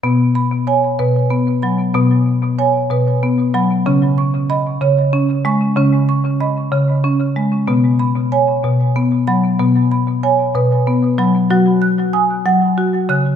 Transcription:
<<
  \new Staff \with { instrumentName = "Marimba" } { \time 6/8 \key b \major \tempo 4. = 63 << { r8 b''8 cis''8 b'4 b''8~ | b''4 cis''8 b'4 b''8~ | b''8 cis'''8 dis''8 cis''4 cis'''8~ | cis'''8 cis'''8 dis''4. r8 |
r8 b''8 cis''4. b''8~ | b''8 b''8 cis''8 b'4 b''8~ | b''8 fis'''8 gis''8 fis''4 fis'''8 | } \\ { b4 gis''4 b4 | b4 gis''4 b4 | cis'4 b''4 cis'4 | cis'4 b''4 cis'4 |
b4 gis''4 b4 | b4 gis''4 b4 | fis'4 dis'''4 fis'4 | } >> }
  \new Staff \with { instrumentName = "Marimba" } { \clef bass \time 6/8 \key b \major b,4. b,4 fis8 | b,4. b,4 fis8 | cis4. cis4 gis8 | cis4. cis4 gis8 |
b,4. b,4 fis8 | b,4. b,4 fis8 | fis4. fis4 cis8 | }
>>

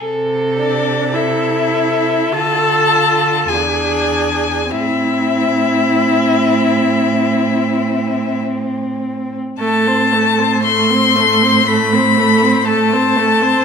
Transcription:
<<
  \new Staff \with { instrumentName = "Violin" } { \time 4/4 \key a \minor \tempo 4 = 51 r8 d''8 e''4 a''4 gis''4 | e''2. r4 | a''4 c'''4 b''4 a''4 | }
  \new Staff \with { instrumentName = "Violin" } { \time 4/4 \key a \minor a'4 a'4 f'4 d'4 | c'1 | a'16 c''16 a'16 c''16 a'16 c''16 a'16 c''16 a'16 c''16 a'16 c''16 a'16 c''16 a'16 c''16 | }
  \new Staff \with { instrumentName = "Viola" } { \time 4/4 \key a \minor r8 d'8 e'4 a'4 gis'4 | e'2. r4 | a16 c'16 a16 c'16 a16 c'16 a16 c'16 a16 c'16 a16 c'16 a16 c'16 a16 c'16 | }
  \new Staff \with { instrumentName = "Cello" } { \clef bass \time 4/4 \key a \minor c2 d4 e,4 | a,1 | a,1 | }
>>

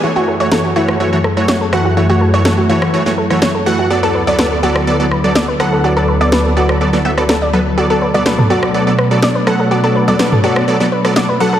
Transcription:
<<
  \new Staff \with { instrumentName = "Synth pluck" } { \time 4/4 \key fis \minor \tempo 4 = 124 e'16 fis'16 a'16 cis''16 a'16 fis'16 e'16 r8. a'16 r16 cis''16 a'16 fis'16 fis'16 | e'16 fis'16 a'16 cis''16 a'16 fis'16 e'16 r8. a'16 r16 cis''16 a'16 fis'16 fis'16 | fis'16 a'16 b'16 d''16 b'16 a'16 fis'16 r8. b'16 r16 d''16 b'16 a'16 a'16 | fis'16 a'16 b'16 d''16 b'16 a'16 fis'16 r8. fis''16 b'16 a'16 d''16 a''16 r16 |
fis'16 a'16 b'16 d''16 b'16 a'16 fis'16 r8. b'16 r16 d''16 b'16 a'16 a'16 | fis'16 a'16 b'16 d''16 b'16 a'16 fis'16 r8. b'16 r16 d''16 b'16 a'16 a'16 | }
  \new Staff \with { instrumentName = "Supersaw synth" } { \time 4/4 \key fis \minor <e a fis' cis''>16 <e a fis' cis''>8 <e a fis' cis''>16 <e a fis' cis''>8 <e a fis' cis''>8 <e a fis' cis''>16 <e a fis' cis''>16 r16 <e a fis' cis''>16 <e a fis' cis''>16 r16 <e a fis' fis''>8 | <e a fis' cis''>16 <e a fis' cis''>8 <e a fis' cis''>16 <e a fis' cis''>8 <e a fis' cis''>8 <e a fis' cis''>16 <e a fis' cis''>16 r16 <e a fis' cis''>16 <e a fis' cis''>16 r16 <e a fis' fis''>8 | <fis b a' d''>16 <fis b a' d''>8 <fis b a' d''>16 <fis b a' d''>8 <fis b a' d''>8 <fis b a' d''>16 <fis b a' d''>16 r16 <fis b a' d''>16 <fis b a' d''>16 r16 <fis b a' fis''>8 | <fis b a' d''>16 <fis b a' d''>8 <fis b a' d''>16 <fis b a' d''>8 <fis b a' d''>8 <fis b a' d''>16 <fis b a' d''>16 <fis b a' e''>16 <fis b a' d''>16 <fis b a' d''>16 r16 <fis b a' b'>16 r16 |
<fis b a' d''>16 <fis b a' d''>8 <fis b a' d''>16 <fis b a' d''>8 <fis b a' d''>8 <fis b a' d''>16 <fis b a' d''>16 r16 <fis b a' d''>16 <fis b a' d''>16 r16 <fis b a' fis''>8 | <fis b a' d''>16 <fis b a' d''>8 <fis b a' d''>16 <fis b a' d''>8 <fis b a' d''>8 <fis b a' d''>16 <fis b a' d''>16 r16 <fis b a' d''>16 <fis b a' d''>16 r16 <fis b a' fis''>8 | }
  \new Staff \with { instrumentName = "Analog synth pad" } { \time 4/4 \key fis \minor << { <fis, fis a gis'>1~ | <fis, fis a gis'>1 | <d, d fis b'>1~ | <d, d fis b'>1 |
<b, a cis''>1~ | <b, a cis''>1 | } \\ { e'1~ | e'1~ | e'1~ | e'1 |
d'1~ | d'1 | } >> }
  \new DrumStaff \with { instrumentName = "Drums" } \drummode { \time 4/4 r4 sn8. ss16 r8 ss8 sn8 ss8 | r4 sn8. ss16 r16 sn8 ss16 sn4 | r4 sn8. ss16 r8 ss8 sn8 ss8 | r4 sn8. ss16 r16 sn8 ss16 sn4 |
r8. cgho16 sn16 toml8 ss16 r8 ss8 sn8 ss8 | r8. cgho16 sn16 toml8 ss16 r16 sn8 ss16 sn4 | }
>>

